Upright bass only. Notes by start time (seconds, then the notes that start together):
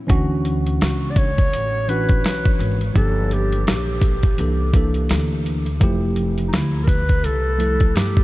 0.10 D2
0.81 C#2
1.53 A1
2.25 B1
2.59 G#1
2.95 G1
3.68 A#1
4.39 C2
5.10 D2
5.81 F1
6.53 D2
7.24 C2
7.96 G2